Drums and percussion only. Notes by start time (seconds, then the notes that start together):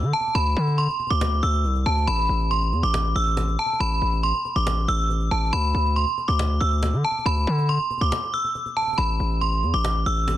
0.03 cajon slap
0.13 cajon slap
0.21 cajon slap
0.28 cajon slap
0.35 cajon slap
0.46 cajon slap
0.67 cajon slap
0.78 cajon slap
0.89 cajon slap
1.00 cajon slap
1.07 cajon slap
1.14 cajon slap
1.21 cajon slap
1.32 cajon slap
1.43 cajon slap
1.54 cajon slap
1.64 cajon slap
1.75 cajon slap
1.86 cajon slap
1.91 cajon slap
1.97 cajon slap
2.02 cajon slap
2.08 cajon slap
2.18 cajon slap
2.40 cajon slap
2.51 cajon slap
2.62 cajon slap
2.72 cajon slap
2.94 cajon slap
3.05 cajon slap
3.16 cajon slap
3.26 cajon slap
3.37 cajon slap
3.48 cajon slap
3.59 cajon slap
3.66 cajon slap
3.73 cajon slap
3.80 cajon slap
3.91 cajon slap
4.13 cajon slap
4.24 cajon slap
4.34 cajon slap
4.45 cajon slap
4.67 cajon slap
4.78 cajon slap
4.88 cajon slap
4.99 cajon slap
5.10 cajon slap
5.21 cajon slap
5.31 cajon slap
5.39 cajon slap
5.46 cajon slap
5.53 cajon slap
5.64 cajon slap
5.85 cajon slap
5.96 cajon slap
6.07 cajon slap
6.18 cajon slap
6.39 cajon slap
6.50 cajon slap
6.61 cajon slap
6.72 cajon slap
6.83 cajon slap
6.93 cajon slap
7.04 cajon slap
7.11 cajon slap
7.18 cajon slap
7.26 cajon slap
7.37 cajon slap
7.58 cajon slap
7.69 cajon slap
7.80 cajon slap
7.90 cajon slap
7.98 cajon slap
8.05 cajon slap
8.12 cajon slap
8.23 cajon slap
8.34 cajon slap
8.44 cajon slap
8.55 cajon slap
8.66 cajon slap
8.77 cajon slap
8.82 cajon slap
8.87 cajon slap
8.93 cajon slap
8.98 cajon slap
9.09 cajon slap
9.31 cajon slap
9.41 cajon slap
9.52 cajon slap
9.63 cajon slap
9.85 cajon slap
9.95 cajon slap
10.06 cajon slap
10.17 cajon slap
10.28 cajon slap